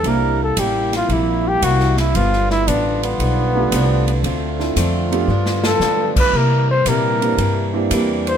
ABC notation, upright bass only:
X:1
M:4/4
L:1/8
Q:"Swing" 1/4=114
K:C
V:1 name="Upright bass" clef=bass
C,,2 A,,,2 _B,,,2 C,,2 | G,,,2 A,,,2 B,,,2 C,,2 | D,,2 F,,2 G,,2 D,2 | C,2 _B,,2 G,,2 E,,2 |]